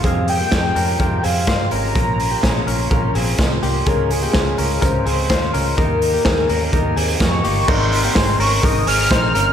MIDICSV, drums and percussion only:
0, 0, Header, 1, 2, 480
1, 0, Start_track
1, 0, Key_signature, -4, "major"
1, 0, Tempo, 476948
1, 43, Time_signature, 4, 2, 24, 8
1, 9590, End_track
2, 0, Start_track
2, 0, Title_t, "Drums"
2, 37, Note_on_c, 9, 42, 70
2, 40, Note_on_c, 9, 36, 105
2, 138, Note_off_c, 9, 42, 0
2, 141, Note_off_c, 9, 36, 0
2, 279, Note_on_c, 9, 46, 68
2, 380, Note_off_c, 9, 46, 0
2, 520, Note_on_c, 9, 38, 101
2, 525, Note_on_c, 9, 36, 98
2, 526, Note_on_c, 9, 42, 66
2, 620, Note_off_c, 9, 38, 0
2, 625, Note_off_c, 9, 36, 0
2, 627, Note_off_c, 9, 42, 0
2, 766, Note_on_c, 9, 46, 68
2, 867, Note_off_c, 9, 46, 0
2, 1003, Note_on_c, 9, 42, 65
2, 1004, Note_on_c, 9, 36, 102
2, 1104, Note_off_c, 9, 42, 0
2, 1105, Note_off_c, 9, 36, 0
2, 1246, Note_on_c, 9, 46, 82
2, 1346, Note_off_c, 9, 46, 0
2, 1479, Note_on_c, 9, 42, 74
2, 1484, Note_on_c, 9, 36, 114
2, 1487, Note_on_c, 9, 38, 103
2, 1580, Note_off_c, 9, 42, 0
2, 1585, Note_off_c, 9, 36, 0
2, 1588, Note_off_c, 9, 38, 0
2, 1722, Note_on_c, 9, 46, 65
2, 1823, Note_off_c, 9, 46, 0
2, 1966, Note_on_c, 9, 42, 77
2, 1968, Note_on_c, 9, 36, 110
2, 2066, Note_off_c, 9, 42, 0
2, 2068, Note_off_c, 9, 36, 0
2, 2210, Note_on_c, 9, 46, 64
2, 2311, Note_off_c, 9, 46, 0
2, 2447, Note_on_c, 9, 38, 95
2, 2451, Note_on_c, 9, 36, 107
2, 2454, Note_on_c, 9, 42, 66
2, 2548, Note_off_c, 9, 38, 0
2, 2552, Note_off_c, 9, 36, 0
2, 2555, Note_off_c, 9, 42, 0
2, 2694, Note_on_c, 9, 46, 67
2, 2794, Note_off_c, 9, 46, 0
2, 2929, Note_on_c, 9, 36, 105
2, 2930, Note_on_c, 9, 42, 69
2, 3030, Note_off_c, 9, 36, 0
2, 3030, Note_off_c, 9, 42, 0
2, 3171, Note_on_c, 9, 46, 86
2, 3272, Note_off_c, 9, 46, 0
2, 3403, Note_on_c, 9, 42, 71
2, 3409, Note_on_c, 9, 36, 115
2, 3411, Note_on_c, 9, 38, 102
2, 3504, Note_off_c, 9, 42, 0
2, 3509, Note_off_c, 9, 36, 0
2, 3512, Note_off_c, 9, 38, 0
2, 3652, Note_on_c, 9, 46, 61
2, 3752, Note_off_c, 9, 46, 0
2, 3888, Note_on_c, 9, 42, 73
2, 3892, Note_on_c, 9, 36, 110
2, 3988, Note_off_c, 9, 42, 0
2, 3993, Note_off_c, 9, 36, 0
2, 4131, Note_on_c, 9, 46, 65
2, 4232, Note_off_c, 9, 46, 0
2, 4362, Note_on_c, 9, 38, 98
2, 4369, Note_on_c, 9, 42, 69
2, 4373, Note_on_c, 9, 36, 100
2, 4463, Note_off_c, 9, 38, 0
2, 4470, Note_off_c, 9, 42, 0
2, 4474, Note_off_c, 9, 36, 0
2, 4612, Note_on_c, 9, 46, 68
2, 4713, Note_off_c, 9, 46, 0
2, 4854, Note_on_c, 9, 36, 105
2, 4854, Note_on_c, 9, 42, 68
2, 4954, Note_off_c, 9, 42, 0
2, 4955, Note_off_c, 9, 36, 0
2, 5097, Note_on_c, 9, 46, 79
2, 5198, Note_off_c, 9, 46, 0
2, 5328, Note_on_c, 9, 42, 71
2, 5333, Note_on_c, 9, 36, 109
2, 5336, Note_on_c, 9, 38, 104
2, 5429, Note_off_c, 9, 42, 0
2, 5434, Note_off_c, 9, 36, 0
2, 5437, Note_off_c, 9, 38, 0
2, 5578, Note_on_c, 9, 46, 66
2, 5679, Note_off_c, 9, 46, 0
2, 5815, Note_on_c, 9, 42, 75
2, 5817, Note_on_c, 9, 36, 105
2, 5915, Note_off_c, 9, 42, 0
2, 5918, Note_off_c, 9, 36, 0
2, 6057, Note_on_c, 9, 46, 64
2, 6157, Note_off_c, 9, 46, 0
2, 6289, Note_on_c, 9, 38, 102
2, 6296, Note_on_c, 9, 36, 103
2, 6296, Note_on_c, 9, 42, 67
2, 6389, Note_off_c, 9, 38, 0
2, 6396, Note_off_c, 9, 42, 0
2, 6397, Note_off_c, 9, 36, 0
2, 6535, Note_on_c, 9, 46, 70
2, 6636, Note_off_c, 9, 46, 0
2, 6773, Note_on_c, 9, 36, 103
2, 6775, Note_on_c, 9, 42, 73
2, 6874, Note_off_c, 9, 36, 0
2, 6876, Note_off_c, 9, 42, 0
2, 7016, Note_on_c, 9, 46, 86
2, 7117, Note_off_c, 9, 46, 0
2, 7246, Note_on_c, 9, 42, 72
2, 7250, Note_on_c, 9, 36, 117
2, 7254, Note_on_c, 9, 38, 101
2, 7347, Note_off_c, 9, 42, 0
2, 7351, Note_off_c, 9, 36, 0
2, 7355, Note_off_c, 9, 38, 0
2, 7491, Note_on_c, 9, 46, 64
2, 7592, Note_off_c, 9, 46, 0
2, 7730, Note_on_c, 9, 49, 107
2, 7733, Note_on_c, 9, 36, 124
2, 7831, Note_off_c, 9, 49, 0
2, 7833, Note_off_c, 9, 36, 0
2, 7970, Note_on_c, 9, 44, 68
2, 7970, Note_on_c, 9, 46, 72
2, 8071, Note_off_c, 9, 44, 0
2, 8071, Note_off_c, 9, 46, 0
2, 8206, Note_on_c, 9, 38, 117
2, 8210, Note_on_c, 9, 44, 66
2, 8212, Note_on_c, 9, 36, 118
2, 8213, Note_on_c, 9, 46, 81
2, 8306, Note_off_c, 9, 38, 0
2, 8310, Note_off_c, 9, 44, 0
2, 8313, Note_off_c, 9, 36, 0
2, 8313, Note_off_c, 9, 46, 0
2, 8452, Note_on_c, 9, 44, 65
2, 8454, Note_on_c, 9, 46, 82
2, 8552, Note_off_c, 9, 44, 0
2, 8555, Note_off_c, 9, 46, 0
2, 8689, Note_on_c, 9, 36, 121
2, 8691, Note_on_c, 9, 44, 66
2, 8693, Note_on_c, 9, 46, 80
2, 8790, Note_off_c, 9, 36, 0
2, 8792, Note_off_c, 9, 44, 0
2, 8794, Note_off_c, 9, 46, 0
2, 8927, Note_on_c, 9, 44, 70
2, 8927, Note_on_c, 9, 46, 96
2, 9027, Note_off_c, 9, 44, 0
2, 9027, Note_off_c, 9, 46, 0
2, 9162, Note_on_c, 9, 46, 80
2, 9165, Note_on_c, 9, 36, 127
2, 9168, Note_on_c, 9, 44, 74
2, 9170, Note_on_c, 9, 38, 112
2, 9262, Note_off_c, 9, 46, 0
2, 9266, Note_off_c, 9, 36, 0
2, 9268, Note_off_c, 9, 44, 0
2, 9270, Note_off_c, 9, 38, 0
2, 9409, Note_on_c, 9, 44, 70
2, 9409, Note_on_c, 9, 46, 70
2, 9509, Note_off_c, 9, 46, 0
2, 9510, Note_off_c, 9, 44, 0
2, 9590, End_track
0, 0, End_of_file